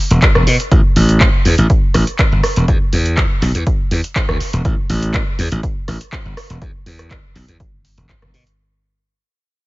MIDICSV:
0, 0, Header, 1, 4, 480
1, 0, Start_track
1, 0, Tempo, 491803
1, 700, Time_signature, 4, 2, 24, 8
1, 9435, End_track
2, 0, Start_track
2, 0, Title_t, "Slap bass"
2, 0, Program_c, 0, 36
2, 105, Note_on_c, 0, 28, 96
2, 183, Note_off_c, 0, 28, 0
2, 346, Note_on_c, 0, 28, 89
2, 423, Note_off_c, 0, 28, 0
2, 459, Note_on_c, 0, 47, 103
2, 545, Note_off_c, 0, 47, 0
2, 699, Note_on_c, 0, 33, 100
2, 785, Note_off_c, 0, 33, 0
2, 938, Note_on_c, 0, 33, 94
2, 1240, Note_off_c, 0, 33, 0
2, 1419, Note_on_c, 0, 40, 93
2, 1505, Note_off_c, 0, 40, 0
2, 1545, Note_on_c, 0, 33, 88
2, 1623, Note_off_c, 0, 33, 0
2, 1899, Note_on_c, 0, 33, 91
2, 1985, Note_off_c, 0, 33, 0
2, 2265, Note_on_c, 0, 31, 90
2, 2343, Note_off_c, 0, 31, 0
2, 2506, Note_on_c, 0, 28, 100
2, 2583, Note_off_c, 0, 28, 0
2, 2619, Note_on_c, 0, 40, 102
2, 2704, Note_off_c, 0, 40, 0
2, 2859, Note_on_c, 0, 40, 90
2, 3161, Note_off_c, 0, 40, 0
2, 3339, Note_on_c, 0, 35, 99
2, 3424, Note_off_c, 0, 35, 0
2, 3464, Note_on_c, 0, 40, 90
2, 3543, Note_off_c, 0, 40, 0
2, 3820, Note_on_c, 0, 40, 90
2, 3905, Note_off_c, 0, 40, 0
2, 4185, Note_on_c, 0, 38, 85
2, 4263, Note_off_c, 0, 38, 0
2, 4424, Note_on_c, 0, 28, 97
2, 4502, Note_off_c, 0, 28, 0
2, 4538, Note_on_c, 0, 33, 104
2, 4624, Note_off_c, 0, 33, 0
2, 4778, Note_on_c, 0, 33, 94
2, 5080, Note_off_c, 0, 33, 0
2, 5258, Note_on_c, 0, 40, 101
2, 5344, Note_off_c, 0, 40, 0
2, 5386, Note_on_c, 0, 33, 90
2, 5463, Note_off_c, 0, 33, 0
2, 5740, Note_on_c, 0, 33, 97
2, 5825, Note_off_c, 0, 33, 0
2, 6105, Note_on_c, 0, 31, 88
2, 6183, Note_off_c, 0, 31, 0
2, 6344, Note_on_c, 0, 28, 103
2, 6422, Note_off_c, 0, 28, 0
2, 6458, Note_on_c, 0, 40, 107
2, 6544, Note_off_c, 0, 40, 0
2, 6697, Note_on_c, 0, 40, 94
2, 7000, Note_off_c, 0, 40, 0
2, 7178, Note_on_c, 0, 35, 95
2, 7264, Note_off_c, 0, 35, 0
2, 7304, Note_on_c, 0, 40, 91
2, 7383, Note_off_c, 0, 40, 0
2, 7784, Note_on_c, 0, 28, 93
2, 7862, Note_off_c, 0, 28, 0
2, 8024, Note_on_c, 0, 28, 90
2, 8102, Note_off_c, 0, 28, 0
2, 8139, Note_on_c, 0, 47, 100
2, 8225, Note_off_c, 0, 47, 0
2, 9435, End_track
3, 0, Start_track
3, 0, Title_t, "Muted slap bass strokes"
3, 4298, Note_on_c, 9, 29, 42
3, 4396, Note_off_c, 9, 29, 0
3, 9435, End_track
4, 0, Start_track
4, 0, Title_t, "Drums"
4, 103, Note_on_c, 9, 42, 61
4, 201, Note_off_c, 9, 42, 0
4, 218, Note_on_c, 9, 36, 120
4, 218, Note_on_c, 9, 42, 52
4, 219, Note_on_c, 9, 39, 115
4, 316, Note_off_c, 9, 36, 0
4, 316, Note_off_c, 9, 39, 0
4, 316, Note_off_c, 9, 42, 0
4, 344, Note_on_c, 9, 37, 84
4, 441, Note_off_c, 9, 37, 0
4, 458, Note_on_c, 9, 46, 98
4, 556, Note_off_c, 9, 46, 0
4, 584, Note_on_c, 9, 42, 63
4, 682, Note_off_c, 9, 42, 0
4, 698, Note_on_c, 9, 42, 49
4, 699, Note_on_c, 9, 36, 123
4, 796, Note_off_c, 9, 36, 0
4, 796, Note_off_c, 9, 42, 0
4, 938, Note_on_c, 9, 46, 108
4, 1036, Note_off_c, 9, 46, 0
4, 1063, Note_on_c, 9, 42, 67
4, 1161, Note_off_c, 9, 42, 0
4, 1178, Note_on_c, 9, 39, 115
4, 1178, Note_on_c, 9, 42, 50
4, 1179, Note_on_c, 9, 36, 121
4, 1275, Note_off_c, 9, 42, 0
4, 1276, Note_off_c, 9, 36, 0
4, 1276, Note_off_c, 9, 39, 0
4, 1418, Note_on_c, 9, 46, 93
4, 1515, Note_off_c, 9, 46, 0
4, 1543, Note_on_c, 9, 42, 63
4, 1641, Note_off_c, 9, 42, 0
4, 1658, Note_on_c, 9, 42, 52
4, 1659, Note_on_c, 9, 36, 116
4, 1755, Note_off_c, 9, 42, 0
4, 1756, Note_off_c, 9, 36, 0
4, 1897, Note_on_c, 9, 37, 61
4, 1897, Note_on_c, 9, 46, 106
4, 1995, Note_off_c, 9, 37, 0
4, 1995, Note_off_c, 9, 46, 0
4, 2023, Note_on_c, 9, 42, 65
4, 2120, Note_off_c, 9, 42, 0
4, 2137, Note_on_c, 9, 42, 51
4, 2138, Note_on_c, 9, 39, 114
4, 2139, Note_on_c, 9, 36, 117
4, 2235, Note_off_c, 9, 39, 0
4, 2235, Note_off_c, 9, 42, 0
4, 2236, Note_off_c, 9, 36, 0
4, 2377, Note_on_c, 9, 37, 93
4, 2377, Note_on_c, 9, 46, 96
4, 2475, Note_off_c, 9, 37, 0
4, 2475, Note_off_c, 9, 46, 0
4, 2502, Note_on_c, 9, 42, 66
4, 2600, Note_off_c, 9, 42, 0
4, 2618, Note_on_c, 9, 42, 52
4, 2619, Note_on_c, 9, 36, 119
4, 2715, Note_off_c, 9, 42, 0
4, 2716, Note_off_c, 9, 36, 0
4, 2857, Note_on_c, 9, 46, 106
4, 2954, Note_off_c, 9, 46, 0
4, 2983, Note_on_c, 9, 42, 67
4, 3081, Note_off_c, 9, 42, 0
4, 3098, Note_on_c, 9, 39, 116
4, 3098, Note_on_c, 9, 42, 54
4, 3099, Note_on_c, 9, 36, 115
4, 3195, Note_off_c, 9, 42, 0
4, 3196, Note_off_c, 9, 36, 0
4, 3196, Note_off_c, 9, 39, 0
4, 3339, Note_on_c, 9, 39, 35
4, 3339, Note_on_c, 9, 46, 87
4, 3436, Note_off_c, 9, 46, 0
4, 3437, Note_off_c, 9, 39, 0
4, 3464, Note_on_c, 9, 42, 66
4, 3562, Note_off_c, 9, 42, 0
4, 3579, Note_on_c, 9, 36, 113
4, 3579, Note_on_c, 9, 42, 54
4, 3676, Note_off_c, 9, 36, 0
4, 3676, Note_off_c, 9, 42, 0
4, 3818, Note_on_c, 9, 46, 98
4, 3916, Note_off_c, 9, 46, 0
4, 3944, Note_on_c, 9, 42, 65
4, 4042, Note_off_c, 9, 42, 0
4, 4059, Note_on_c, 9, 36, 112
4, 4059, Note_on_c, 9, 39, 114
4, 4059, Note_on_c, 9, 42, 54
4, 4156, Note_off_c, 9, 36, 0
4, 4156, Note_off_c, 9, 42, 0
4, 4157, Note_off_c, 9, 39, 0
4, 4185, Note_on_c, 9, 37, 86
4, 4282, Note_off_c, 9, 37, 0
4, 4299, Note_on_c, 9, 46, 91
4, 4397, Note_off_c, 9, 46, 0
4, 4424, Note_on_c, 9, 42, 65
4, 4522, Note_off_c, 9, 42, 0
4, 4538, Note_on_c, 9, 36, 118
4, 4539, Note_on_c, 9, 42, 51
4, 4636, Note_off_c, 9, 36, 0
4, 4636, Note_off_c, 9, 42, 0
4, 4779, Note_on_c, 9, 46, 105
4, 4876, Note_off_c, 9, 46, 0
4, 4905, Note_on_c, 9, 42, 70
4, 5002, Note_off_c, 9, 42, 0
4, 5018, Note_on_c, 9, 36, 114
4, 5019, Note_on_c, 9, 39, 119
4, 5019, Note_on_c, 9, 42, 55
4, 5116, Note_off_c, 9, 36, 0
4, 5116, Note_off_c, 9, 42, 0
4, 5117, Note_off_c, 9, 39, 0
4, 5259, Note_on_c, 9, 46, 92
4, 5356, Note_off_c, 9, 46, 0
4, 5385, Note_on_c, 9, 42, 71
4, 5483, Note_off_c, 9, 42, 0
4, 5498, Note_on_c, 9, 36, 112
4, 5500, Note_on_c, 9, 42, 58
4, 5596, Note_off_c, 9, 36, 0
4, 5598, Note_off_c, 9, 42, 0
4, 5739, Note_on_c, 9, 37, 63
4, 5739, Note_on_c, 9, 46, 101
4, 5837, Note_off_c, 9, 37, 0
4, 5837, Note_off_c, 9, 46, 0
4, 5865, Note_on_c, 9, 42, 69
4, 5962, Note_off_c, 9, 42, 0
4, 5978, Note_on_c, 9, 36, 109
4, 5980, Note_on_c, 9, 39, 119
4, 5980, Note_on_c, 9, 42, 53
4, 6076, Note_off_c, 9, 36, 0
4, 6077, Note_off_c, 9, 42, 0
4, 6078, Note_off_c, 9, 39, 0
4, 6219, Note_on_c, 9, 37, 88
4, 6219, Note_on_c, 9, 46, 86
4, 6317, Note_off_c, 9, 37, 0
4, 6317, Note_off_c, 9, 46, 0
4, 6344, Note_on_c, 9, 42, 67
4, 6442, Note_off_c, 9, 42, 0
4, 6458, Note_on_c, 9, 36, 118
4, 6458, Note_on_c, 9, 42, 54
4, 6556, Note_off_c, 9, 36, 0
4, 6556, Note_off_c, 9, 42, 0
4, 6699, Note_on_c, 9, 46, 106
4, 6796, Note_off_c, 9, 46, 0
4, 6824, Note_on_c, 9, 37, 61
4, 6824, Note_on_c, 9, 42, 71
4, 6922, Note_off_c, 9, 37, 0
4, 6922, Note_off_c, 9, 42, 0
4, 6938, Note_on_c, 9, 36, 118
4, 6939, Note_on_c, 9, 39, 121
4, 6939, Note_on_c, 9, 42, 56
4, 7036, Note_off_c, 9, 36, 0
4, 7036, Note_off_c, 9, 42, 0
4, 7037, Note_off_c, 9, 39, 0
4, 7180, Note_on_c, 9, 39, 38
4, 7180, Note_on_c, 9, 46, 92
4, 7277, Note_off_c, 9, 46, 0
4, 7278, Note_off_c, 9, 39, 0
4, 7305, Note_on_c, 9, 42, 72
4, 7402, Note_off_c, 9, 42, 0
4, 7418, Note_on_c, 9, 36, 110
4, 7420, Note_on_c, 9, 42, 57
4, 7516, Note_off_c, 9, 36, 0
4, 7517, Note_off_c, 9, 42, 0
4, 7659, Note_on_c, 9, 46, 102
4, 7757, Note_off_c, 9, 46, 0
4, 7785, Note_on_c, 9, 42, 68
4, 7883, Note_off_c, 9, 42, 0
4, 7898, Note_on_c, 9, 36, 116
4, 7900, Note_on_c, 9, 42, 55
4, 7901, Note_on_c, 9, 39, 117
4, 7996, Note_off_c, 9, 36, 0
4, 7998, Note_off_c, 9, 39, 0
4, 7998, Note_off_c, 9, 42, 0
4, 8025, Note_on_c, 9, 37, 84
4, 8123, Note_off_c, 9, 37, 0
4, 8139, Note_on_c, 9, 46, 89
4, 8237, Note_off_c, 9, 46, 0
4, 8265, Note_on_c, 9, 42, 68
4, 8363, Note_off_c, 9, 42, 0
4, 9435, End_track
0, 0, End_of_file